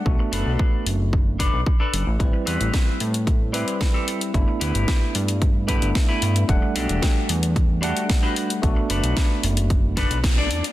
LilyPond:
<<
  \new Staff \with { instrumentName = "Clean electric guitar" } { \time 4/4 \key b \phrygian \tempo 4 = 112 r8 <d' a' b'>4 r4 <d' a' b'>8 r16 <d' a' b'>8 r16 | r8 <c' g' b'>4 r4 <c' g' b'>8 r16 <c' g' a'>8 r16 | r8 <e' g' b'>4 r4 <e' g' b'>8 r16 <e' g' b'>8 r16 | r8 <d' fis' g' a'>4 r4 <d' fis' g' a'>8 r16 <d' fis' g' b'>8 r16 |
r8 <d' a' b'>4 r4 <d' a' b'>8 r16 <d' a' d''>8 r16 | }
  \new Staff \with { instrumentName = "Tine electric piano" } { \time 4/4 \key b \phrygian <a b d' fis'>2~ <a b d' fis'>8 r4. | <g c' e' b'>2~ <g c' e' b'>8 <g c' e' b'>4. | <a b d' e'>2~ <a b d' e'>8 <a b d' e'>4. | <g a d' fis''>2~ <g a d' fis''>8 <g a d' fis''>4. |
<a b d' fis'>2~ <a b d' fis'>8 r4. | }
  \new Staff \with { instrumentName = "Analog synth bass" } { \clef bass \time 4/4 \key b \phrygian b,,16 r16 fis,,16 b,,16 r8 fis,,4~ fis,,16 b,,16 r8 fis,,16 a,,16 | a,,16 r16 e,16 a,,16 r8 a,4~ a,16 r4 r16 | g,,16 r16 d,16 g,,16 r8 g,4~ g,16 g,,16 r8 g,8 | e,,16 r16 b,,16 e,,16 r8 e,4~ e,16 r4 r16 |
b,,16 r16 fis,,16 b,,16 r8 fis,,4~ fis,,16 b,,8. e,16 r16 | }
  \new DrumStaff \with { instrumentName = "Drums" } \drummode { \time 4/4 bd8 hho8 bd8 hho8 bd8 <hho bd>8 bd8 hho8 | <hh bd>8 hho16 hh16 <hh bd sn>8 hho16 hh16 <hh bd>8 hho16 hh16 <hh bd sn>8 hho16 hh16 | <hh bd>8 hho16 hh16 <hh bd sn>8 hho16 hh16 <hh bd>8 <hho bd>16 hh16 <hh bd sn>8 hho16 hh16 | <hh bd>8 hho16 hh16 <hh bd sn>8 hho16 hh16 <hh bd>8 hho16 hh16 <hh bd sn>8 hho16 hh16 |
<hh bd>8 hho16 hh16 <hh bd sn>8 hho16 hh16 <hh bd>8 <hho bd sn>16 hh16 <hh bd sn>8 hho16 hh16 | }
>>